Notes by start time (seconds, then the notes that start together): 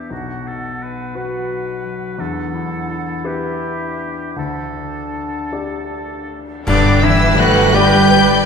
Already playing: E3 B3 D4 G4 B4 E5
0.10 B1 B2 F#4 F#5
0.47 D#4 A4
0.81 F#4 B4
1.15 F#3 F#4 B4
1.51 D#4
1.85 F#3
2.19 E2 E3 D4 A4 F#5
2.54 D4 E4
2.89 E4
3.25 B3 G4 B4 E5
3.62 D4
3.99 B3
4.36 D2 D3 D4 A4 A5
4.76 D4
5.52 A3 G4 D5
5.91 D4
6.30 A3
6.67 G1 G2 D3 D4 G4 B4 D5 D6, concert bass drum, crash
7.01 D3 E3 D4 E4 E5 E6
7.36 F#3 A3 F#4 A4 B4 F#5 F#6
7.74 G3 G4 B4 D5 G5 G6
8.11 B4 D5